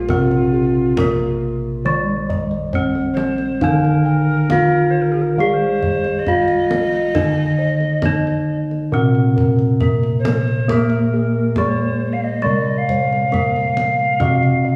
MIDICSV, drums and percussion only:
0, 0, Header, 1, 2, 480
1, 0, Start_track
1, 0, Tempo, 881575
1, 49, Time_signature, 4, 2, 24, 8
1, 8035, End_track
2, 0, Start_track
2, 0, Title_t, "Kendang"
2, 47, Note_on_c, 9, 63, 45
2, 47, Note_on_c, 9, 64, 54
2, 101, Note_off_c, 9, 63, 0
2, 101, Note_off_c, 9, 64, 0
2, 170, Note_on_c, 9, 62, 22
2, 224, Note_off_c, 9, 62, 0
2, 529, Note_on_c, 9, 63, 55
2, 529, Note_on_c, 9, 64, 56
2, 584, Note_off_c, 9, 63, 0
2, 584, Note_off_c, 9, 64, 0
2, 1253, Note_on_c, 9, 64, 54
2, 1308, Note_off_c, 9, 64, 0
2, 1367, Note_on_c, 9, 62, 22
2, 1421, Note_off_c, 9, 62, 0
2, 1487, Note_on_c, 9, 64, 67
2, 1541, Note_off_c, 9, 64, 0
2, 1608, Note_on_c, 9, 62, 21
2, 1662, Note_off_c, 9, 62, 0
2, 1725, Note_on_c, 9, 63, 58
2, 1779, Note_off_c, 9, 63, 0
2, 1841, Note_on_c, 9, 62, 20
2, 1896, Note_off_c, 9, 62, 0
2, 1967, Note_on_c, 9, 63, 41
2, 1967, Note_on_c, 9, 64, 53
2, 2021, Note_off_c, 9, 63, 0
2, 2021, Note_off_c, 9, 64, 0
2, 2094, Note_on_c, 9, 62, 23
2, 2149, Note_off_c, 9, 62, 0
2, 2449, Note_on_c, 9, 63, 55
2, 2449, Note_on_c, 9, 64, 54
2, 2504, Note_off_c, 9, 63, 0
2, 2504, Note_off_c, 9, 64, 0
2, 3172, Note_on_c, 9, 64, 55
2, 3226, Note_off_c, 9, 64, 0
2, 3291, Note_on_c, 9, 62, 20
2, 3345, Note_off_c, 9, 62, 0
2, 3411, Note_on_c, 9, 64, 58
2, 3466, Note_off_c, 9, 64, 0
2, 3528, Note_on_c, 9, 62, 23
2, 3582, Note_off_c, 9, 62, 0
2, 3652, Note_on_c, 9, 63, 59
2, 3706, Note_off_c, 9, 63, 0
2, 3771, Note_on_c, 9, 62, 21
2, 3825, Note_off_c, 9, 62, 0
2, 3892, Note_on_c, 9, 63, 43
2, 3892, Note_on_c, 9, 64, 60
2, 3946, Note_off_c, 9, 63, 0
2, 3946, Note_off_c, 9, 64, 0
2, 4249, Note_on_c, 9, 62, 22
2, 4303, Note_off_c, 9, 62, 0
2, 4368, Note_on_c, 9, 63, 56
2, 4368, Note_on_c, 9, 64, 57
2, 4422, Note_off_c, 9, 63, 0
2, 4422, Note_off_c, 9, 64, 0
2, 4504, Note_on_c, 9, 62, 25
2, 4558, Note_off_c, 9, 62, 0
2, 4744, Note_on_c, 9, 62, 18
2, 4798, Note_off_c, 9, 62, 0
2, 4982, Note_on_c, 9, 62, 17
2, 5036, Note_off_c, 9, 62, 0
2, 5106, Note_on_c, 9, 64, 54
2, 5160, Note_off_c, 9, 64, 0
2, 5220, Note_on_c, 9, 62, 23
2, 5274, Note_off_c, 9, 62, 0
2, 5338, Note_on_c, 9, 64, 59
2, 5392, Note_off_c, 9, 64, 0
2, 5462, Note_on_c, 9, 62, 22
2, 5517, Note_off_c, 9, 62, 0
2, 5581, Note_on_c, 9, 63, 60
2, 5636, Note_off_c, 9, 63, 0
2, 5705, Note_on_c, 9, 62, 17
2, 5759, Note_off_c, 9, 62, 0
2, 5822, Note_on_c, 9, 63, 44
2, 5822, Note_on_c, 9, 64, 62
2, 5876, Note_off_c, 9, 63, 0
2, 5876, Note_off_c, 9, 64, 0
2, 5933, Note_on_c, 9, 62, 25
2, 5987, Note_off_c, 9, 62, 0
2, 6293, Note_on_c, 9, 63, 54
2, 6293, Note_on_c, 9, 64, 53
2, 6348, Note_off_c, 9, 63, 0
2, 6348, Note_off_c, 9, 64, 0
2, 7018, Note_on_c, 9, 64, 52
2, 7072, Note_off_c, 9, 64, 0
2, 7146, Note_on_c, 9, 62, 21
2, 7200, Note_off_c, 9, 62, 0
2, 7262, Note_on_c, 9, 64, 54
2, 7316, Note_off_c, 9, 64, 0
2, 7384, Note_on_c, 9, 62, 18
2, 7439, Note_off_c, 9, 62, 0
2, 7497, Note_on_c, 9, 63, 44
2, 7551, Note_off_c, 9, 63, 0
2, 7620, Note_on_c, 9, 62, 15
2, 7674, Note_off_c, 9, 62, 0
2, 7733, Note_on_c, 9, 63, 38
2, 7733, Note_on_c, 9, 64, 50
2, 7787, Note_off_c, 9, 63, 0
2, 7787, Note_off_c, 9, 64, 0
2, 7857, Note_on_c, 9, 62, 21
2, 7911, Note_off_c, 9, 62, 0
2, 8035, End_track
0, 0, End_of_file